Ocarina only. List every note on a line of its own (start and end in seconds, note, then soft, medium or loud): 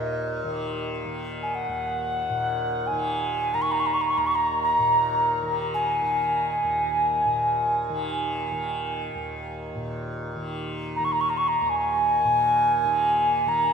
0.00 0.39 D#5 medium
1.42 1.56 G#5 medium
1.55 2.88 F#5 medium
2.87 3.56 G#5 medium
3.54 3.63 A#5 medium
3.62 3.73 C#6 medium
3.72 3.81 A#5 medium
3.79 3.88 C#6 medium
3.86 3.95 A#5 medium
3.94 4.03 C#6 medium
4.01 4.12 A#5 medium
4.10 4.19 C#6 medium
4.18 4.28 A#5 medium
4.27 4.36 C#6 medium
4.35 4.62 A#5 medium
4.63 5.44 A#5 medium
5.74 8.93 G#5 medium
10.96 11.06 A#5 medium
11.04 11.14 C#6 medium
11.12 11.22 A#5 medium
11.21 11.31 C#6 medium
11.29 11.39 A#5 medium
11.37 11.50 C#6 medium
11.48 11.59 A#5 medium
11.59 11.71 A#5 medium
11.69 13.50 G#5 loud
13.48 13.73 A#5 medium